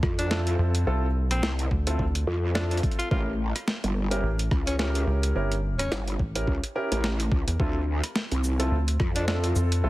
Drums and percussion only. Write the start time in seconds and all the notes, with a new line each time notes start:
0.03 kick, cross-stick
0.19 closed hi-hat
0.31 snare
0.47 closed hi-hat
0.75 closed hi-hat
1.31 cross-stick, closed hi-hat
1.43 snare
1.59 closed hi-hat
1.71 kick
1.87 closed hi-hat
1.99 kick
2.15 closed hi-hat
2.55 snare
2.71 closed hi-hat
2.77 closed hi-hat
2.83 kick, closed hi-hat
2.91 closed hi-hat
3.00 closed hi-hat
3.11 kick
3.56 cross-stick, closed hi-hat
3.68 snare
3.84 closed hi-hat
4.11 closed hi-hat
4.39 closed hi-hat
4.51 kick, cross-stick
4.67 closed hi-hat
4.79 snare
4.95 closed hi-hat
5.23 closed hi-hat
5.52 closed hi-hat
5.79 cross-stick, closed hi-hat
5.92 snare
6.08 closed hi-hat
6.19 kick
6.35 closed hi-hat
6.47 kick
6.64 closed hi-hat
6.92 closed hi-hat
7.04 snare
7.20 closed hi-hat
7.32 kick
7.48 closed hi-hat
7.60 kick
8.04 cross-stick, closed hi-hat
8.16 snare
8.32 closed hi-hat
8.44 shaker
8.60 closed hi-hat
8.88 closed hi-hat
9.00 kick, cross-stick
9.16 closed hi-hat
9.28 snare
9.44 closed hi-hat
9.56 shaker
9.72 closed hi-hat